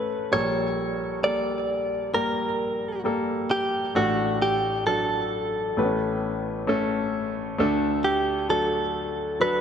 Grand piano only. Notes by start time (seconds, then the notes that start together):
Already playing: A1 A2 A3 C#4 A4 B4
0.32 A#1 A#2 G3 A#3 A4
1.23 G3 A#3 A4
2.13 G3 A#3 A#4
3.04 G3 A#3 A4
3.95 A1 A2 A3 D4 A4
4.86 F#3 D4 A4
5.77 A1 A2 A3 B3 B4
5.84 C#4
6.67 A3 C#4 A4
7.58 D2 D3 A3 D4 A4
8.49 F#3 D4 A4
9.40 F#3 D4 A4